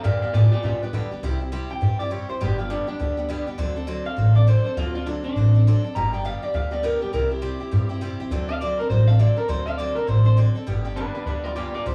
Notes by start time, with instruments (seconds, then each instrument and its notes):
0.03 steel-string acoustic guitar G2 D3 G3 B3 D4 G4, upright bass G2, clean electric guitar D5 F5
0.22 steel-string acoustic guitar G3 B3 D4 G4, clean electric guitar D5 F5, muted upright bass stroke
0.33 steel-string acoustic guitar G2 D3 G3 B3 D4 G4, upright bass A2, clean electric guitar F4 D5
0.52 steel-string acoustic guitar G3 B3 D4 G4, clean electric guitar F4 D5, muted upright bass stroke
0.63 upright bass B2, steel-string acoustic guitar G3 B3 D4 G4, clean electric guitar F4 D5
0.82 steel-string acoustic guitar G3 B3 D4 G4, clean electric guitar B4, muted upright bass stroke
0.93 steel-string acoustic guitar G2 D3 G3 B3 D4 G4, upright bass D3
1.11 steel-string acoustic guitar G3 B3 D4 G4, muted upright bass stroke
1.23 upright bass C2, steel-string acoustic guitar C3 G3 C4 E4 G4
1.40 steel-string acoustic guitar C4 E4 G4
1.52 steel-string acoustic guitar C3 G3 C4 E4 G4
1.70 steel-string acoustic guitar C4 E4 G4, clean electric guitar G5, muted upright bass stroke
1.81 upright bass G2, steel-string acoustic guitar G3 C4 E4 G4
1.99 steel-string acoustic guitar C4 E4 G4, clean electric guitar D5
2.10 steel-string acoustic guitar C3 G3 C4 E4 G4, clean electric guitar C#5
2.29 steel-string acoustic guitar C4 E4 G4, clean electric guitar C5, muted upright bass stroke
2.40 upright bass G1, steel-string acoustic guitar G2 D3 G3 B3 D4 G4, clean electric guitar G4
2.58 steel-string acoustic guitar G3 B3 D4 G4, clean electric guitar F4
2.70 steel-string acoustic guitar G2 D3 G3 B3 D4 G4, clean electric guitar D4
2.87 steel-string acoustic guitar G3 B3 D4 G4, clean electric guitar D4, muted upright bass stroke
2.99 upright bass D2, steel-string acoustic guitar G3 B3 D4 G4
3.17 steel-string acoustic guitar G3 B3 D4 G4
3.29 steel-string acoustic guitar G2 D3 G3 B3 D4 G4
3.47 steel-string acoustic guitar G3 B3 D4 G4
3.58 upright bass D2, steel-string acoustic guitar D3 F#3 C4 D4 A4
3.76 steel-string acoustic guitar C4 D4 A4
3.87 steel-string acoustic guitar D3 F#3 C4 D4 A4
4.05 steel-string acoustic guitar C4 D4 A4, clean electric guitar F5, muted upright bass stroke
4.17 upright bass A1, steel-string acoustic guitar F#3 C4 D4 A4
4.35 steel-string acoustic guitar C4 D4 A4, clean electric guitar D5
4.47 steel-string acoustic guitar D3 F#3 C4 D4 A4, clean electric guitar C5
4.65 steel-string acoustic guitar C4 D4 A4, clean electric guitar C5
4.77 upright bass D2, steel-string acoustic guitar D3 F#3 C4 D4 A4, clean electric guitar F4
4.95 steel-string acoustic guitar C4 D4 A4, clean electric guitar F4
5.06 steel-string acoustic guitar D3 F#3 C4 D4 A4, clean electric guitar D4
5.24 steel-string acoustic guitar C4 D4 A4, clean electric guitar D4, muted upright bass stroke
5.36 upright bass A1, steel-string acoustic guitar F#3 C4 D4 A4
5.54 steel-string acoustic guitar C4 D4 A4
5.67 steel-string acoustic guitar D3 F#3 C4 D4 A4
5.84 steel-string acoustic guitar C4 D4 A4
5.95 upright bass G1, steel-string acoustic guitar G2 D3 G3 B3 D4 G4, clean electric guitar A#5
6.13 steel-string acoustic guitar G3 B3 D4 G4, clean electric guitar G5
6.24 steel-string acoustic guitar G2 D3 G3 B3 D4 G4, clean electric guitar F5
6.42 steel-string acoustic guitar G3 B3 D4 G4, clean electric guitar D5, muted upright bass stroke
6.54 upright bass D2, steel-string acoustic guitar G3 B3 D4 G4, clean electric guitar F5
6.71 steel-string acoustic guitar G3 B3 D4 G4, clean electric guitar D5
6.83 steel-string acoustic guitar G2 D3 G3 B3 D4 G4, clean electric guitar A#4
7.01 steel-string acoustic guitar G3 B3 D4 G4, clean electric guitar G4, muted upright bass stroke
7.13 upright bass C2, steel-string acoustic guitar C3 G3 C4 E4 G4, clean electric guitar A#4
7.30 steel-string acoustic guitar C4 E4 G4, clean electric guitar G4
7.42 steel-string acoustic guitar C3 G3 C4 E4 G4
7.60 steel-string acoustic guitar C4 E4 G4
7.71 upright bass G2, steel-string acoustic guitar G3 C4 E4 G4
7.89 steel-string acoustic guitar C4 E4 G4
8.01 steel-string acoustic guitar C3 G3 C4 E4 G4
8.20 steel-string acoustic guitar C4 E4 G4, muted upright bass stroke
8.31 upright bass D2, steel-string acoustic guitar D3 F#3 C4 D4 A4
8.49 steel-string acoustic guitar C4 D4 A4, clean electric guitar F5
8.61 steel-string acoustic guitar D3 F#3 C4 D4 A4, clean electric guitar D5
8.78 steel-string acoustic guitar C4 D4 A4, clean electric guitar A#4, muted upright bass stroke
8.90 upright bass A1, steel-string acoustic guitar F#3 C4 D4 A4, clean electric guitar C5
9.07 steel-string acoustic guitar C4 D4 A4, clean electric guitar F5
9.19 steel-string acoustic guitar D3 F#3 C4 D4 A4, clean electric guitar D5
9.36 steel-string acoustic guitar C4 D4 A4, clean electric guitar A#4
9.48 upright bass D2, steel-string acoustic guitar D3 F#3 C4 D4 A4, clean electric guitar C5
9.66 steel-string acoustic guitar C4 D4 A4, clean electric guitar F5
9.77 steel-string acoustic guitar D3 F#3 C4 D4 A4, clean electric guitar D5
9.95 steel-string acoustic guitar C4 D4 A4, clean electric guitar A#4, muted upright bass stroke
10.07 upright bass A1, steel-string acoustic guitar F#3 C4 D4 A4, clean electric guitar C5
10.25 steel-string acoustic guitar C4 D4 A4, clean electric guitar C5
10.37 steel-string acoustic guitar D3 F#3 C4 D4 A4
10.55 steel-string acoustic guitar C4 D4 A4
10.67 upright bass G1, steel-string acoustic guitar G2 D3 G3 B3 D4 G4
10.85 steel-string acoustic guitar G3 B3 D4 G4
10.96 steel-string acoustic guitar G2 D3 G3 B3 D4 G4, clean electric guitar D4 B4
11.14 steel-string acoustic guitar G3 B3 D4 G4, clean electric guitar D4 B4
11.26 upright bass D2, steel-string acoustic guitar G3 B3 D4 G4, clean electric guitar D4 B4
11.44 steel-string acoustic guitar G3 B3 D4 G4, clean electric guitar F4 D5
11.55 steel-string acoustic guitar G2 D3 G3 B3 D4 G4, clean electric guitar F4 D5
11.74 steel-string acoustic guitar G3 B3 D4 G4, clean electric guitar F4 D5, muted upright bass stroke
11.86 upright bass C2, steel-string acoustic guitar C3 G3 C4 E4 G4, clean electric guitar C5